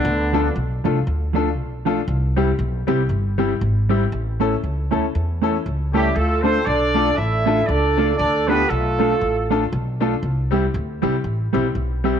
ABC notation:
X:1
M:4/4
L:1/8
Q:"Swing" 1/4=118
K:Ddor
V:1 name="Horn section"
[D,B,D]2 z6 | z8 | z6 z [G,EG] | [A,FA] [CAc] [DAd]2 [A,EAe]2 [DAd]2 |
[DAd] [B,GB] [A,FA]3 z3 | z8 |]
V:2 name="Upright piano"
z [A,DFA] z [A,DFA] z [A,DFA] z [A,DFA] | z [G,CEG] z [G,CEG] z [G,CEG] z [G,CEG] | z [A,^CEA] z [A,CEA] z [A,CEA] z [A,CEA] | z [A,DFA] z [A,DFA] z [A,DFA] z [A,DFA] |
z [A,DFA] z [A,DFA] z [A,DFA] z [A,DFA] | z [G,CEG] z [G,CEG] z [G,CEG] z [G,CEG] |]
V:3 name="Clean electric guitar"
z [F,A,DF] z [F,A,DF] z [F,A,DF] z [F,A,DF] | z [G,CEG] z [G,CEG] z [G,CEG] z [G,CEG] | z [A,^CEA] z [A,CEA] z [A,CEA] z [A,CEA] | z [A,DFA] z [A,DFA] z [A,DFA] z [A,DFA] |
z [A,DFA] z [A,DFA] z [A,DFA] z [A,DFA] | z [G,CEG] z [G,CEG] z [G,CEG] z [G,CEG] |]
V:4 name="Upright bass" clef=bass
D,,2 B,,, C,, D,,2 B,,,2 | C,,2 B,,, C,, G,,,2 _A,,,2 | A,,,2 ^C,, D,, E,,2 C,,2 | D,,2 B,,,2 A,,,2 _D,,2 |
D,,2 B,,,2 A,,,2 B,,,2 | C,,2 D,, C,, A,,, B,,, B,,,2 |]